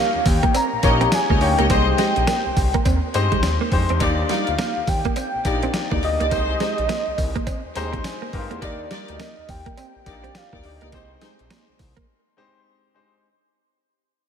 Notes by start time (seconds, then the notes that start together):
Already playing: A#3 C#4 D#4 G4 C#5 F5
0.15 D#2
0.26 D#2 G5, muted clean electric guitar stroke, kick, open hi-hat, tambourine
0.43 A#3, kick, closed hi-hat
0.54 C4 A#5, closed hi-hat, tambourine, cowbell
0.73 A#1
0.83 A#1 A#3 C#4 D#4 G4 A#4 C#5 D#5, muted clean electric guitar stroke, kick, closed hi-hat, tambourine
1.01 C4, closed hi-hat
1.12 G#5, snare, closed hi-hat, tambourine, cowbell
1.29 C#2 A#3 G4 A#4 C#5 D#5, kick
1.41 D2 A#3 C#4 D#4 G4 C#5 G5, muted clean electric guitar stroke, open hi-hat
1.58 C#2 A#3 G4 A#4 C#5 D#5, closed hi-hat
1.70 C2 G#3 A#3 C4 D#4 G4 G#4 C5 D#5 G5, kick, closed hi-hat, tambourine, cowbell
1.98 G#3 G4 G#4 C5 D#5, snare, closed hi-hat, tambourine
2.16 A#1, muted clean electric guitar stroke, closed hi-hat
2.27 A#3, snare, closed hi-hat, tambourine, cowbell
2.46 C2
2.57 C2, muted clean electric guitar stroke, kick, open hi-hat, tambourine
2.74 A#3, kick, closed hi-hat
2.85 D#2 C4, kick, closed hi-hat, tambourine, cowbell
3.14 G2 G#3 C4 D#4 G4 G#4 C5 D#5, muted clean electric guitar stroke, closed hi-hat, tambourine
3.32 C2 G#3, kick, closed hi-hat
3.43 D#2, snare, closed hi-hat, tambourine, cowbell
3.61 A#3
3.72 F2 G#3 C4 D#4 G4 C5, muted clean electric guitar stroke, kick, open hi-hat
3.89 E2 C4, closed hi-hat
4.00 D#2 A#3 D4 D#4 G4 A#4 D5, kick, closed hi-hat, tambourine, cowbell
4.29 G3 D#4 G4 A#4 D5 F5, snare, closed hi-hat, tambourine
4.47 D2, muted clean electric guitar stroke, closed hi-hat
4.58 A#3, snare, closed hi-hat, tambourine, cowbell
4.77 D#2
4.87 D#2 G5, muted clean electric guitar stroke, kick, open hi-hat, tambourine
5.05 A#3, kick, closed hi-hat
5.16 C4 G5, closed hi-hat, tambourine, cowbell
5.34 A#1
5.45 A#1 A#3 D4 D#4 G4 A#4 D5, muted clean electric guitar stroke, kick, closed hi-hat, tambourine
5.63 C4, closed hi-hat
5.74 snare, closed hi-hat, tambourine, cowbell
5.91 D2 A#3 D#4 G4 A#4 D5, kick
6.03 D2 A#3 D4 D#4 G4 D5 D#5, muted clean electric guitar stroke, open hi-hat
6.20 C#2 A#3 D#4 G4 A#4 D5, closed hi-hat
6.31 C2 G#3 A#3 C4 D#4 G4 G#4 C5, kick, closed hi-hat, tambourine, cowbell
6.60 G#3 D#4 G4 G#4 C5, snare, closed hi-hat, tambourine
6.78 A#1, muted clean electric guitar stroke, closed hi-hat
6.89 A#3, snare, closed hi-hat, tambourine, cowbell
7.08 C2
7.18 C2, muted clean electric guitar stroke, kick, open hi-hat, tambourine
7.36 A#3, kick, closed hi-hat
7.47 C4, kick, closed hi-hat, tambourine, cowbell
7.65 D#2
7.75 D#2 G#3 C4 D#4 G4 G#4 C5 A#5, muted clean electric guitar stroke, closed hi-hat, tambourine
7.93 C4, kick, closed hi-hat
8.04 G#5, snare, closed hi-hat, tambourine, cowbell
8.22 A#3
8.33 G2 G#3 C4 D#4 G4 A#4 F5, muted clean electric guitar stroke, kick, open hi-hat
8.51 E2 A#3, closed hi-hat
8.62 D#2 A#3 D#4 G4 A#4 D5, kick, closed hi-hat, tambourine, cowbell
8.90 G3 D#4 G4 A#4 D5, snare, closed hi-hat, tambourine
9.08 D2 D#5, muted clean electric guitar stroke, closed hi-hat
9.20 A#3, snare, closed hi-hat, tambourine, cowbell
9.38 D#2
9.49 D#2 G5, muted clean electric guitar stroke, kick, open hi-hat, tambourine
9.66 A#3, kick, closed hi-hat
9.77 C4, closed hi-hat, tambourine, cowbell
9.96 A#1
10.06 A#1 A#3 D4 D#4 G4 A#4 D5, muted clean electric guitar stroke, kick, closed hi-hat, tambourine
10.24 C4, closed hi-hat
10.35 F5, snare, closed hi-hat, tambourine, cowbell
10.53 D2 A#3 D#4 G4 A#4 D5, kick
10.64 D2 A#3 D4 D#4 G4 D5 D#5, muted clean electric guitar stroke, open hi-hat
10.81 C#2 A#3 D#4 G4 A#4 D5, closed hi-hat
10.92 C2 G#3 A#3 C4 D#4 G4 G#4 C5, kick, closed hi-hat, tambourine, cowbell
11.21 G#3 D#4 G4 G#4 C5, snare, closed hi-hat, tambourine
11.39 A#1, muted clean electric guitar stroke, closed hi-hat
11.50 A#3, snare, closed hi-hat, tambourine, cowbell
11.69 C2
11.79 C2, muted clean electric guitar stroke, kick, open hi-hat, tambourine
11.97 A#3, kick, closed hi-hat
12.37 G#3 C4 D#4 G4 C5
12.94 G#3 C4 D#4 G4 C5